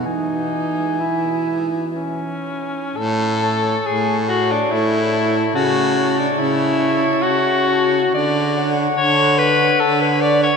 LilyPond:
<<
  \new Staff \with { instrumentName = "Clarinet" } { \time 3/4 \key a \major \tempo 4 = 71 gis''2~ gis''8 r8 | r8 a''4 a''4 a''8 | a''8 a''4 a''4 a''8 | r8 fis''4 fis''4 fis''8 | }
  \new Staff \with { instrumentName = "Alto saxophone" } { \time 3/4 \key a \major dis'4 e'4 r4 | r8 cis''4 cis''4 cis''8 | cis''8 cis''4 cis''4 cis''8 | r8 cis''4 cis''4 cis''8 | }
  \new Staff \with { instrumentName = "Tenor saxophone" } { \time 3/4 \key a \major gis,16 b,16 e16 gis16 e16 b,16 gis,16 b,16 cis'4 | a'4 gis'8 fis'16 d'16 e'4 | fis'8. d'16 e'4 fis'4 | d''8. r16 cis''8 b'8 a'16 b'16 d''16 cis''16 | }
  \new Staff \with { instrumentName = "Baritone saxophone" } { \clef bass \time 3/4 \key a \major e2~ e8 r8 | a,4 a,4 a,4 | cis4 cis4 cis4 | d4 d4 d4 | }
>>